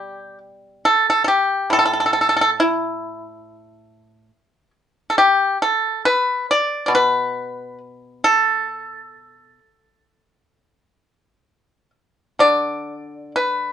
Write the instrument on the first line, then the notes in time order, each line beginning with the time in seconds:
pipa
Already playing: B2 G3 G4
0.85 A4
1.10 A4
1.24 G4 A4
1.70 A2 A4
1.79 A4
1.85 A4
1.93 A4
2.00 A4
2.06 A4
2.13 A4
2.21 A4
2.29 A4
2.37 A4
2.41 A4
2.60 E4
5.10 A4
5.18 G4
5.62 A4
6.05 B4
6.51 D5
6.86 B2 D5
6.95 B4
8.24 A4
12.39 D3 D5
13.36 B4